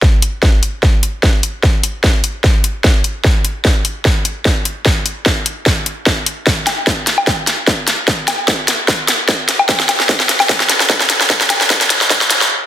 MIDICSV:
0, 0, Header, 1, 2, 480
1, 0, Start_track
1, 0, Tempo, 402685
1, 27, Time_signature, 4, 2, 24, 8
1, 15095, End_track
2, 0, Start_track
2, 0, Title_t, "Drums"
2, 27, Note_on_c, 9, 36, 98
2, 27, Note_on_c, 9, 38, 47
2, 146, Note_off_c, 9, 36, 0
2, 146, Note_off_c, 9, 38, 0
2, 267, Note_on_c, 9, 42, 81
2, 386, Note_off_c, 9, 42, 0
2, 507, Note_on_c, 9, 36, 95
2, 507, Note_on_c, 9, 38, 49
2, 626, Note_off_c, 9, 36, 0
2, 626, Note_off_c, 9, 38, 0
2, 747, Note_on_c, 9, 42, 80
2, 866, Note_off_c, 9, 42, 0
2, 987, Note_on_c, 9, 36, 92
2, 987, Note_on_c, 9, 38, 48
2, 1106, Note_off_c, 9, 36, 0
2, 1106, Note_off_c, 9, 38, 0
2, 1227, Note_on_c, 9, 42, 84
2, 1346, Note_off_c, 9, 42, 0
2, 1467, Note_on_c, 9, 36, 93
2, 1467, Note_on_c, 9, 38, 51
2, 1586, Note_off_c, 9, 36, 0
2, 1586, Note_off_c, 9, 38, 0
2, 1707, Note_on_c, 9, 42, 81
2, 1826, Note_off_c, 9, 42, 0
2, 1947, Note_on_c, 9, 36, 104
2, 1947, Note_on_c, 9, 38, 50
2, 2066, Note_off_c, 9, 36, 0
2, 2066, Note_off_c, 9, 38, 0
2, 2187, Note_on_c, 9, 42, 79
2, 2306, Note_off_c, 9, 42, 0
2, 2427, Note_on_c, 9, 36, 97
2, 2427, Note_on_c, 9, 38, 58
2, 2546, Note_off_c, 9, 36, 0
2, 2546, Note_off_c, 9, 38, 0
2, 2667, Note_on_c, 9, 42, 81
2, 2786, Note_off_c, 9, 42, 0
2, 2907, Note_on_c, 9, 36, 91
2, 2907, Note_on_c, 9, 38, 54
2, 3026, Note_off_c, 9, 36, 0
2, 3026, Note_off_c, 9, 38, 0
2, 3147, Note_on_c, 9, 42, 82
2, 3266, Note_off_c, 9, 42, 0
2, 3387, Note_on_c, 9, 36, 90
2, 3387, Note_on_c, 9, 38, 57
2, 3506, Note_off_c, 9, 36, 0
2, 3506, Note_off_c, 9, 38, 0
2, 3627, Note_on_c, 9, 42, 78
2, 3746, Note_off_c, 9, 42, 0
2, 3867, Note_on_c, 9, 36, 105
2, 3867, Note_on_c, 9, 38, 58
2, 3986, Note_off_c, 9, 36, 0
2, 3986, Note_off_c, 9, 38, 0
2, 4107, Note_on_c, 9, 42, 77
2, 4226, Note_off_c, 9, 42, 0
2, 4347, Note_on_c, 9, 36, 98
2, 4347, Note_on_c, 9, 38, 63
2, 4466, Note_off_c, 9, 36, 0
2, 4466, Note_off_c, 9, 38, 0
2, 4587, Note_on_c, 9, 42, 82
2, 4706, Note_off_c, 9, 42, 0
2, 4827, Note_on_c, 9, 36, 90
2, 4827, Note_on_c, 9, 38, 61
2, 4946, Note_off_c, 9, 36, 0
2, 4946, Note_off_c, 9, 38, 0
2, 5067, Note_on_c, 9, 42, 77
2, 5186, Note_off_c, 9, 42, 0
2, 5307, Note_on_c, 9, 36, 91
2, 5307, Note_on_c, 9, 38, 60
2, 5426, Note_off_c, 9, 36, 0
2, 5426, Note_off_c, 9, 38, 0
2, 5547, Note_on_c, 9, 42, 76
2, 5666, Note_off_c, 9, 42, 0
2, 5787, Note_on_c, 9, 36, 100
2, 5787, Note_on_c, 9, 38, 66
2, 5906, Note_off_c, 9, 36, 0
2, 5906, Note_off_c, 9, 38, 0
2, 6027, Note_on_c, 9, 42, 75
2, 6146, Note_off_c, 9, 42, 0
2, 6267, Note_on_c, 9, 36, 91
2, 6267, Note_on_c, 9, 38, 71
2, 6386, Note_off_c, 9, 36, 0
2, 6386, Note_off_c, 9, 38, 0
2, 6507, Note_on_c, 9, 42, 81
2, 6626, Note_off_c, 9, 42, 0
2, 6747, Note_on_c, 9, 36, 100
2, 6747, Note_on_c, 9, 38, 70
2, 6866, Note_off_c, 9, 36, 0
2, 6866, Note_off_c, 9, 38, 0
2, 6987, Note_on_c, 9, 42, 75
2, 7106, Note_off_c, 9, 42, 0
2, 7227, Note_on_c, 9, 36, 95
2, 7227, Note_on_c, 9, 38, 70
2, 7346, Note_off_c, 9, 36, 0
2, 7346, Note_off_c, 9, 38, 0
2, 7467, Note_on_c, 9, 42, 76
2, 7586, Note_off_c, 9, 42, 0
2, 7707, Note_on_c, 9, 36, 106
2, 7707, Note_on_c, 9, 38, 70
2, 7826, Note_off_c, 9, 36, 0
2, 7826, Note_off_c, 9, 38, 0
2, 7947, Note_on_c, 9, 38, 78
2, 7947, Note_on_c, 9, 42, 77
2, 7947, Note_on_c, 9, 77, 55
2, 8066, Note_off_c, 9, 38, 0
2, 8066, Note_off_c, 9, 42, 0
2, 8066, Note_off_c, 9, 77, 0
2, 8187, Note_on_c, 9, 36, 96
2, 8187, Note_on_c, 9, 38, 81
2, 8306, Note_off_c, 9, 36, 0
2, 8306, Note_off_c, 9, 38, 0
2, 8427, Note_on_c, 9, 38, 82
2, 8427, Note_on_c, 9, 42, 81
2, 8546, Note_off_c, 9, 38, 0
2, 8546, Note_off_c, 9, 42, 0
2, 8556, Note_on_c, 9, 77, 70
2, 8667, Note_on_c, 9, 36, 94
2, 8667, Note_on_c, 9, 38, 74
2, 8675, Note_off_c, 9, 77, 0
2, 8786, Note_off_c, 9, 36, 0
2, 8786, Note_off_c, 9, 38, 0
2, 8907, Note_on_c, 9, 38, 79
2, 8907, Note_on_c, 9, 42, 75
2, 9026, Note_off_c, 9, 38, 0
2, 9026, Note_off_c, 9, 42, 0
2, 9147, Note_on_c, 9, 36, 98
2, 9147, Note_on_c, 9, 38, 73
2, 9266, Note_off_c, 9, 36, 0
2, 9266, Note_off_c, 9, 38, 0
2, 9387, Note_on_c, 9, 38, 81
2, 9387, Note_on_c, 9, 42, 76
2, 9506, Note_off_c, 9, 38, 0
2, 9506, Note_off_c, 9, 42, 0
2, 9627, Note_on_c, 9, 36, 102
2, 9627, Note_on_c, 9, 38, 78
2, 9746, Note_off_c, 9, 36, 0
2, 9746, Note_off_c, 9, 38, 0
2, 9867, Note_on_c, 9, 38, 87
2, 9867, Note_on_c, 9, 42, 79
2, 9867, Note_on_c, 9, 77, 59
2, 9986, Note_off_c, 9, 38, 0
2, 9986, Note_off_c, 9, 42, 0
2, 9986, Note_off_c, 9, 77, 0
2, 10107, Note_on_c, 9, 36, 98
2, 10107, Note_on_c, 9, 38, 88
2, 10226, Note_off_c, 9, 36, 0
2, 10226, Note_off_c, 9, 38, 0
2, 10347, Note_on_c, 9, 38, 89
2, 10347, Note_on_c, 9, 42, 82
2, 10466, Note_off_c, 9, 38, 0
2, 10466, Note_off_c, 9, 42, 0
2, 10587, Note_on_c, 9, 36, 96
2, 10587, Note_on_c, 9, 38, 83
2, 10706, Note_off_c, 9, 36, 0
2, 10706, Note_off_c, 9, 38, 0
2, 10827, Note_on_c, 9, 38, 90
2, 10827, Note_on_c, 9, 42, 83
2, 10946, Note_off_c, 9, 38, 0
2, 10946, Note_off_c, 9, 42, 0
2, 11067, Note_on_c, 9, 36, 97
2, 11067, Note_on_c, 9, 38, 87
2, 11186, Note_off_c, 9, 36, 0
2, 11186, Note_off_c, 9, 38, 0
2, 11307, Note_on_c, 9, 38, 91
2, 11307, Note_on_c, 9, 42, 82
2, 11426, Note_off_c, 9, 38, 0
2, 11426, Note_off_c, 9, 42, 0
2, 11436, Note_on_c, 9, 77, 68
2, 11547, Note_on_c, 9, 36, 107
2, 11547, Note_on_c, 9, 38, 88
2, 11555, Note_off_c, 9, 77, 0
2, 11666, Note_off_c, 9, 36, 0
2, 11666, Note_off_c, 9, 38, 0
2, 11676, Note_on_c, 9, 38, 76
2, 11787, Note_off_c, 9, 38, 0
2, 11787, Note_on_c, 9, 38, 96
2, 11787, Note_on_c, 9, 42, 82
2, 11787, Note_on_c, 9, 77, 58
2, 11906, Note_off_c, 9, 38, 0
2, 11906, Note_off_c, 9, 42, 0
2, 11906, Note_off_c, 9, 77, 0
2, 11916, Note_on_c, 9, 38, 83
2, 12027, Note_off_c, 9, 38, 0
2, 12027, Note_on_c, 9, 36, 98
2, 12027, Note_on_c, 9, 38, 98
2, 12146, Note_off_c, 9, 36, 0
2, 12146, Note_off_c, 9, 38, 0
2, 12156, Note_on_c, 9, 38, 87
2, 12267, Note_off_c, 9, 38, 0
2, 12267, Note_on_c, 9, 38, 97
2, 12267, Note_on_c, 9, 42, 83
2, 12386, Note_off_c, 9, 38, 0
2, 12386, Note_off_c, 9, 42, 0
2, 12396, Note_on_c, 9, 38, 86
2, 12396, Note_on_c, 9, 77, 68
2, 12507, Note_off_c, 9, 38, 0
2, 12507, Note_on_c, 9, 36, 96
2, 12507, Note_on_c, 9, 38, 97
2, 12516, Note_off_c, 9, 77, 0
2, 12626, Note_off_c, 9, 36, 0
2, 12626, Note_off_c, 9, 38, 0
2, 12636, Note_on_c, 9, 38, 84
2, 12747, Note_off_c, 9, 38, 0
2, 12747, Note_on_c, 9, 38, 99
2, 12747, Note_on_c, 9, 42, 83
2, 12867, Note_off_c, 9, 38, 0
2, 12867, Note_off_c, 9, 42, 0
2, 12877, Note_on_c, 9, 38, 92
2, 12987, Note_off_c, 9, 38, 0
2, 12987, Note_on_c, 9, 36, 93
2, 12987, Note_on_c, 9, 38, 92
2, 13106, Note_off_c, 9, 36, 0
2, 13106, Note_off_c, 9, 38, 0
2, 13116, Note_on_c, 9, 38, 86
2, 13227, Note_off_c, 9, 38, 0
2, 13227, Note_on_c, 9, 38, 98
2, 13227, Note_on_c, 9, 42, 86
2, 13346, Note_off_c, 9, 38, 0
2, 13346, Note_off_c, 9, 42, 0
2, 13356, Note_on_c, 9, 38, 93
2, 13467, Note_off_c, 9, 38, 0
2, 13467, Note_on_c, 9, 36, 101
2, 13467, Note_on_c, 9, 38, 95
2, 13586, Note_off_c, 9, 36, 0
2, 13586, Note_off_c, 9, 38, 0
2, 13596, Note_on_c, 9, 38, 88
2, 13707, Note_off_c, 9, 38, 0
2, 13707, Note_on_c, 9, 38, 106
2, 13707, Note_on_c, 9, 42, 89
2, 13707, Note_on_c, 9, 77, 53
2, 13826, Note_off_c, 9, 38, 0
2, 13826, Note_off_c, 9, 42, 0
2, 13826, Note_off_c, 9, 77, 0
2, 13836, Note_on_c, 9, 38, 94
2, 13947, Note_off_c, 9, 38, 0
2, 13947, Note_on_c, 9, 36, 96
2, 13947, Note_on_c, 9, 38, 112
2, 14066, Note_off_c, 9, 36, 0
2, 14066, Note_off_c, 9, 38, 0
2, 14076, Note_on_c, 9, 38, 95
2, 14076, Note_on_c, 9, 42, 39
2, 14187, Note_off_c, 9, 38, 0
2, 14187, Note_off_c, 9, 42, 0
2, 14187, Note_on_c, 9, 38, 108
2, 14187, Note_on_c, 9, 42, 87
2, 14306, Note_off_c, 9, 38, 0
2, 14306, Note_off_c, 9, 42, 0
2, 14316, Note_on_c, 9, 38, 98
2, 14427, Note_off_c, 9, 38, 0
2, 14427, Note_on_c, 9, 36, 98
2, 14427, Note_on_c, 9, 38, 104
2, 14546, Note_off_c, 9, 36, 0
2, 14546, Note_off_c, 9, 38, 0
2, 14556, Note_on_c, 9, 38, 94
2, 14667, Note_off_c, 9, 38, 0
2, 14667, Note_on_c, 9, 38, 114
2, 14667, Note_on_c, 9, 42, 89
2, 14786, Note_off_c, 9, 38, 0
2, 14786, Note_off_c, 9, 42, 0
2, 14796, Note_on_c, 9, 38, 102
2, 14915, Note_off_c, 9, 38, 0
2, 15095, End_track
0, 0, End_of_file